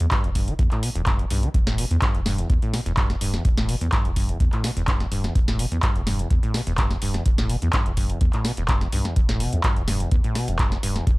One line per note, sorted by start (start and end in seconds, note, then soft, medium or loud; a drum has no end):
0.00 0.06 E2 medium
0.00 0.08 E2 medium
0.00 closed hi-hat soft
0.11 0.26 G2 medium
0.11 kick loud
0.11 clap loud
0.11 closed hi-hat medium
0.24 0.54 E1 medium
0.24 0.30 E2 medium
0.24 closed hi-hat soft
0.35 0.49 G2 medium
0.35 kick medium
0.35 open hi-hat loud
0.48 0.54 E3 loud
0.48 closed hi-hat soft
0.59 0.63 E2 loud
0.59 0.68 E2 medium
0.59 kick loud
0.59 closed hi-hat medium
0.71 0.84 A2 medium
0.71 clap soft
0.71 closed hi-hat soft
0.83 0.90 B2 loud
0.83 open hi-hat loud
0.96 1.25 E1 loud
0.96 1.02 E2 medium
0.96 closed hi-hat medium
1.06 1.21 G2 medium
1.06 kick loud
1.06 clap loud
1.06 closed hi-hat medium
1.19 1.26 E2 medium
1.19 closed hi-hat soft
1.31 1.48 B1 medium
1.31 1.45 G2 medium
1.31 open hi-hat loud
1.43 1.49 E3 loud
1.43 closed hi-hat soft
1.54 1.85 E1 loud
1.54 1.59 E2 loud
1.54 kick loud
1.54 closed hi-hat medium
1.67 1.80 A2 medium
1.67 snare medium
1.67 closed hi-hat soft
1.78 1.85 B2 loud
1.78 open hi-hat loud
1.91 1.97 E2 medium
1.91 1.99 E2 medium
1.91 closed hi-hat soft
2.02 2.16 G2 medium
2.02 kick loud
2.02 clap loud
2.02 closed hi-hat medium
2.15 2.44 E1 medium
2.15 2.21 E2 medium
2.15 closed hi-hat soft
2.26 2.40 G2 medium
2.26 snare medium
2.26 open hi-hat loud
2.38 2.48 E2 medium
2.38 closed hi-hat medium
2.50 2.59 E2 medium
2.50 2.54 E2 loud
2.50 kick loud
2.50 closed hi-hat medium
2.62 2.75 A2 medium
2.62 closed hi-hat soft
2.74 2.80 B2 loud
2.74 snare medium
2.74 open hi-hat loud
2.86 3.16 E1 loud
2.86 2.92 E2 medium
2.86 closed hi-hat medium
2.97 3.12 G2 medium
2.97 kick loud
2.97 clap loud
2.97 closed hi-hat medium
3.10 3.16 E2 medium
3.10 snare soft
3.10 closed hi-hat soft
3.21 3.38 D1 medium
3.21 3.35 G2 medium
3.21 open hi-hat loud
3.34 3.43 E2 loud
3.34 snare soft
3.34 closed hi-hat soft
3.45 3.75 E1 loud
3.45 3.49 E2 loud
3.45 kick loud
3.45 closed hi-hat medium
3.58 3.70 A2 medium
3.58 snare medium
3.58 closed hi-hat soft
3.69 3.76 B2 loud
3.69 open hi-hat loud
3.81 3.87 E2 medium
3.81 3.89 E2 medium
3.81 closed hi-hat medium
3.92 4.07 G2 medium
3.92 kick loud
3.92 clap loud
3.92 closed hi-hat medium
4.05 4.35 E1 medium
4.05 4.11 E2 medium
4.05 closed hi-hat soft
4.16 4.30 G2 medium
4.16 kick medium
4.16 open hi-hat loud
4.29 4.38 E2 medium
4.29 closed hi-hat medium
4.40 4.44 E2 loud
4.40 4.49 E2 medium
4.40 kick loud
4.40 closed hi-hat medium
4.52 4.65 A2 medium
4.52 clap soft
4.52 closed hi-hat soft
4.64 4.71 B2 loud
4.64 snare medium
4.64 open hi-hat medium
4.76 5.06 E1 medium
4.76 4.83 E2 medium
4.76 closed hi-hat medium
4.87 5.02 G2 medium
4.87 kick loud
4.87 clap loud
4.87 closed hi-hat medium
5.00 5.06 E2 medium
5.00 snare soft
5.00 closed hi-hat soft
5.11 5.29 D1 medium
5.11 5.25 G2 medium
5.11 open hi-hat loud
5.24 5.33 E2 loud
5.24 snare soft
5.24 closed hi-hat medium
5.35 5.66 E1 loud
5.35 5.39 E2 loud
5.35 kick loud
5.35 closed hi-hat medium
5.48 5.61 A2 medium
5.48 snare medium
5.48 closed hi-hat soft
5.59 5.66 B2 loud
5.59 open hi-hat loud
5.72 5.80 E2 medium
5.72 5.78 E2 medium
5.72 closed hi-hat medium
5.83 5.97 G2 medium
5.83 kick loud
5.83 clap loud
5.83 closed hi-hat medium
5.95 6.25 E1 medium
5.95 6.02 E2 medium
5.95 closed hi-hat soft
6.07 6.21 G2 medium
6.07 snare medium
6.07 open hi-hat medium
6.19 6.29 E2 medium
6.19 closed hi-hat medium
6.31 6.40 E2 medium
6.31 kick loud
6.31 closed hi-hat medium
6.43 6.56 A2 medium
6.43 closed hi-hat soft
6.54 6.61 B2 loud
6.54 snare medium
6.54 open hi-hat medium
6.67 6.97 E1 medium
6.67 6.73 E2 medium
6.67 closed hi-hat medium
6.78 6.92 G2 medium
6.78 kick loud
6.78 clap loud
6.78 closed hi-hat medium
6.91 6.97 E2 medium
6.91 snare soft
6.91 closed hi-hat soft
7.02 7.19 D1 medium
7.02 7.16 G2 medium
7.02 open hi-hat loud
7.14 7.24 E2 loud
7.14 snare soft
7.14 closed hi-hat medium
7.26 7.56 E1 loud
7.26 7.30 E2 loud
7.26 kick loud
7.26 closed hi-hat medium
7.38 7.51 A2 medium
7.38 snare medium
7.38 closed hi-hat soft
7.49 7.57 B2 loud
7.49 open hi-hat medium
7.62 7.70 E2 medium
7.62 7.68 E2 medium
7.62 closed hi-hat medium
7.73 7.88 G2 medium
7.73 kick loud
7.73 clap loud
7.73 closed hi-hat medium
7.86 8.16 E1 medium
7.86 7.92 E2 medium
7.86 closed hi-hat soft
7.97 8.11 G2 medium
7.97 kick medium
7.97 open hi-hat medium
8.10 8.19 E2 loud
8.10 closed hi-hat medium
8.21 8.30 E2 medium
8.21 8.25 E2 loud
8.21 kick loud
8.21 closed hi-hat medium
8.33 8.47 A2 medium
8.33 clap soft
8.33 closed hi-hat soft
8.45 8.52 B2 loud
8.45 snare medium
8.45 open hi-hat loud
8.57 8.87 E1 loud
8.57 8.64 E2 medium
8.57 closed hi-hat medium
8.68 8.83 G2 medium
8.68 kick loud
8.68 clap loud
8.68 closed hi-hat medium
8.81 8.88 E2 medium
8.81 snare soft
8.81 closed hi-hat soft
8.92 9.01 B1 medium
8.92 9.07 G2 medium
8.92 open hi-hat loud
9.05 9.14 E2 loud
9.05 snare soft
9.05 closed hi-hat medium
9.16 9.47 E1 loud
9.16 9.21 E2 loud
9.16 kick loud
9.16 closed hi-hat medium
9.29 9.42 A2 medium
9.29 snare medium
9.29 closed hi-hat soft
9.40 9.54 B2 loud
9.40 open hi-hat loud
9.53 9.61 E2 medium
9.53 9.62 E2 loud
9.53 closed hi-hat medium
9.64 9.78 G2 medium
9.64 kick loud
9.64 clap loud
9.64 closed hi-hat medium
9.76 10.06 E1 medium
9.76 9.83 E2 medium
9.76 closed hi-hat soft
9.88 10.02 G2 medium
9.88 snare medium
9.88 open hi-hat loud
10.00 10.10 E2 loud
10.00 closed hi-hat medium
10.11 10.16 E2 loud
10.11 10.21 E2 medium
10.11 kick loud
10.11 closed hi-hat medium
10.24 10.37 A2 medium
10.24 closed hi-hat soft
10.35 10.49 B2 loud
10.35 snare medium
10.35 open hi-hat loud
10.48 10.78 E1 medium
10.48 10.57 E2 loud
10.48 closed hi-hat medium
10.59 10.73 G2 medium
10.59 kick loud
10.59 clap loud
10.59 closed hi-hat medium
10.72 10.78 E2 medium
10.72 snare soft
10.72 closed hi-hat soft
10.83 11.00 D1 medium
10.83 10.97 G2 medium
10.83 open hi-hat loud
10.96 11.05 E2 loud
10.96 snare soft
10.96 closed hi-hat medium
11.07 11.19 E1 loud
11.07 11.11 E2 loud
11.07 kick loud
11.07 closed hi-hat medium